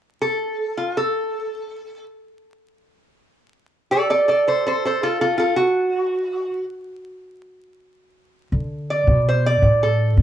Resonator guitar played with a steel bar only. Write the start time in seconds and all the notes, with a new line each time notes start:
0.22 A4
0.77 F4
0.97 A4
3.91 A4 D5
4.10 A4 D5
4.28 A4 D5
4.47 A4 C5
4.66 A4 C5
4.85 A4 C5
5.03 F4 A4
5.21 F4 A4
5.38 F4 A4
5.56 F#4
8.90 D5
9.29 C5
9.46 D5
9.83 A4